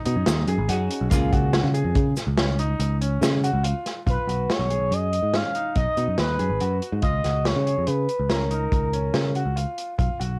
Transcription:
Already playing: F#4 G#4
0.05 B2 D#4, closed hi-hat
0.16 F#2
0.26 D#2, snare, closed hi-hat, shaker
0.47 F#2 G#4, closed hi-hat
0.58 G#1
0.68 F#2 C#4 D#4 F#4 G#4, closed hi-hat
0.91 closed hi-hat
1.01 B1
1.10 C#2 A#3 C#4 F4 G#4, kick, closed hi-hat, shaker
1.33 C#2 F#4, kick, closed hi-hat
1.53 snare, closed hi-hat
1.64 C#3
1.74 G#4, closed hi-hat, shaker
1.84 F2
1.95 C#3, kick, closed hi-hat
2.16 snare, closed hi-hat, shaker
2.27 C#2
2.38 C#4, snare, closed hi-hat
2.59 D#4, closed hi-hat
2.79 C#2, closed hi-hat
3.01 C#4, closed hi-hat
3.21 C#3, snare, closed hi-hat, shaker
3.44 F#4, closed hi-hat, shaker
3.53 C#2
3.63 F4, closed hi-hat
3.86 snare, closed hi-hat
4.06 B1 F4 B4, kick, closed hi-hat
4.27 B1 F#4, closed hi-hat
4.50 C#5, snare, closed hi-hat
4.59 B1
4.70 G#4, closed hi-hat
4.80 B1
4.91 F#2 D#5, closed hi-hat
5.13 closed hi-hat
5.23 G#2
5.34 C#4 F5, snare, closed hi-hat
5.55 D#4, closed hi-hat
5.76 B1 D#5, kick, closed hi-hat
5.97 B2 D#4, closed hi-hat
6.08 F#2
6.18 D#2 B4, snare, closed hi-hat
6.39 F#2 G#4, closed hi-hat
6.50 G#1
6.60 F#2 F#4, closed hi-hat
6.82 closed hi-hat
6.92 G#2
7.02 C#2 F4 D#5, kick, closed hi-hat
7.24 C#2 F#4, snare, closed hi-hat
7.45 C#5, snare, closed hi-hat
7.56 C#3
7.66 G#4, closed hi-hat
7.78 F2
7.86 C#3 B4, closed hi-hat
8.09 closed hi-hat
8.19 C#2
8.29 C#4 A#4, snare, closed hi-hat
8.50 D#4 A#4, closed hi-hat
8.72 C#2, kick, closed hi-hat
8.93 C#4, closed hi-hat
9.14 C#3, snare, closed hi-hat
9.35 F#4, closed hi-hat
9.45 C#2
9.56 F4, closed hi-hat
9.78 closed hi-hat
9.98 B1 F4, kick, closed hi-hat
10.20 B1 F#4, closed hi-hat

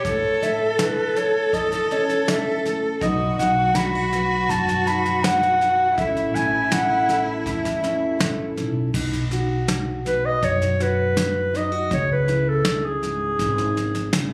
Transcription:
Already playing: C#5
0.05 A2 A4, kick, snare
0.42 A3 E5, snare
0.73 A4
0.79 E4 B4, snare
1.16 A4 C#5, snare
1.53 E3 D#5, kick, snare
1.72 snare
1.91 C#4 C#5, snare
2.09 snare
2.28 E5, snare
2.65 A2, snare
3.01 B1 B2 F#3 D#4 F#4 B4 D#5, kick, snare
3.39 B1 F#3 F#5, snare
3.75 D#4 B5, snare
3.95 F#4
4.13 B4, snare
4.49 F#2 B2 A5, kick, snare
4.68 snare
4.87 D#4 B5, snare
5.06 snare
5.24 B4 F#5, snare
5.43 snare
5.61 F#4, snare
5.97 A1 A2 A3 C#4 E4 A4 E5, kick, snare
6.17 snare
6.33 A1 A3 G#5, snare
6.71 E4 F#5, snare
7.09 A4, snare
7.45 E2 E3 E5, kick, snare
7.65 snare
7.83 C#4, snare
8.20 A1 A4, snare
8.57 B1 E4, snare
8.94 B1 B2 D#4, kick, snare, crash
9.13 snare
9.31 F#4, snare
9.68 muted steel-string acoustic guitar stroke, snare
10.06 B2 B4, snare
10.26 D#5
10.43 F#2 C#5, kick, snare
10.62 snare
10.80 F#4 B4, snare
11.17 snare
11.54 D#4 D#5, snare
11.72 F#4
11.90 C#2 C#3 C#4 C#5, kick, snare
12.12 B4
12.28 E4, snare
12.49 A4
12.65 muted steel-string acoustic guitar stroke, snare
12.85 G#4
13.02 G#2, snare
13.39 G#1, kick, snare
13.58 snare
13.77 snare
13.95 snare
14.13 C#3, snare

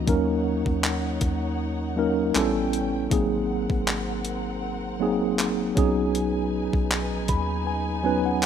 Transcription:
0.06 D#2 F#3 A#3 C#4 D#4 A#4 C#5 F#5, kick, closed hi-hat
0.66 D#2, kick
0.83 clap, closed hi-hat
1.21 D#2, kick, closed hi-hat
1.96 F#3 A#3 C#4 D#4 A#4
2.34 A1 G3 B3 C#4 E4 A4 B4 G5, clap, closed hi-hat
2.73 closed hi-hat
3.10 G#1 F#3 A#3 C4 D#4 G#4 A#4 F#5, kick, closed hi-hat
3.70 G#1, kick
3.87 clap, closed hi-hat
4.25 closed hi-hat
5.00 F#3 A#3 C4 D#4 G#4
5.39 clap, closed hi-hat
5.75 B1 F#3 B3 C#4 D#4 G#4 B4 G#5, kick, closed hi-hat
6.15 closed hi-hat
6.73 B1, kick
6.91 clap, closed hi-hat
7.12 A#1
7.28 D#2 B5, kick, closed hi-hat
7.67 G#5
8.03 F#3 B3 C#4 D#4 B4 G#5
8.26 F#5
8.43 clap

